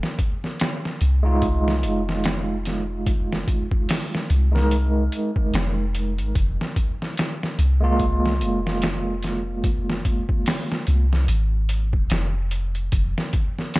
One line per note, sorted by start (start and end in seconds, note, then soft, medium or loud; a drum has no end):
0.03 snare soft
0.19 kick medium
0.19 closed hi-hat medium
0.44 snare soft
0.60 snare loud
0.60 closed hi-hat medium
0.85 snare soft
1.01 1.85 C2 medium
1.01 closed hi-hat medium
1.23 4.47 G#3 medium
1.23 4.48 D#4 medium
1.23 4.48 F4 medium
1.42 kick loud
1.42 closed hi-hat medium
1.68 snare medium
1.83 3.44 F1 medium
1.83 closed hi-hat medium
2.09 snare soft
2.24 snare loud
2.24 closed hi-hat medium
2.65 snare soft
2.65 closed hi-hat medium
3.06 kick loud
3.06 closed hi-hat medium
3.32 snare soft
3.48 kick medium
3.48 closed hi-hat medium
3.71 kick medium
3.89 snare loud
3.89 open hi-hat medium
4.15 snare medium
4.30 5.09 C2 medium
4.30 closed hi-hat medium
4.52 6.32 G#3 medium
4.52 6.33 D#4 medium
4.52 6.34 A#4 medium
4.56 snare soft
4.71 closed hi-hat medium
5.12 closed hi-hat medium
5.36 kick medium
5.54 6.20 F1 medium
5.54 snare loud
5.54 closed hi-hat medium
5.95 closed hi-hat medium
6.18 6.33 G#1 medium
6.18 closed hi-hat soft
6.35 6.56 F1 medium
6.35 kick loud
6.35 closed hi-hat medium
6.61 snare soft
6.76 kick medium
6.76 closed hi-hat medium
7.02 snare soft
7.17 snare loud
7.17 closed hi-hat medium
7.43 snare soft
7.59 8.43 C2 medium
7.59 closed hi-hat medium
7.81 11.04 G#3 medium
7.81 11.05 A#3 medium
7.81 11.06 F4 loud
8.00 kick loud
8.00 closed hi-hat medium
8.26 snare medium
8.41 10.02 F1 medium
8.41 closed hi-hat medium
8.67 snare soft
8.82 snare loud
8.82 closed hi-hat medium
9.23 snare soft
9.23 closed hi-hat medium
9.64 kick loud
9.64 closed hi-hat medium
9.90 snare soft
10.05 kick medium
10.05 closed hi-hat medium
10.29 kick medium
10.46 snare loud
10.46 open hi-hat medium
10.72 snare medium
10.87 11.28 C2 medium
10.87 closed hi-hat medium
11.13 snare soft
11.28 11.95 G#1 medium
11.28 closed hi-hat medium
11.69 closed hi-hat medium
11.93 12.08 D#1 medium
11.93 kick medium
12.10 12.90 F1 medium
12.10 snare loud
12.10 closed hi-hat medium
12.51 closed hi-hat medium
12.75 closed hi-hat soft
12.92 13.14 F1 medium
12.92 kick loud
12.92 closed hi-hat medium
13.18 snare medium
13.33 kick medium
13.33 closed hi-hat medium
13.59 snare soft
13.74 snare loud
13.74 closed hi-hat medium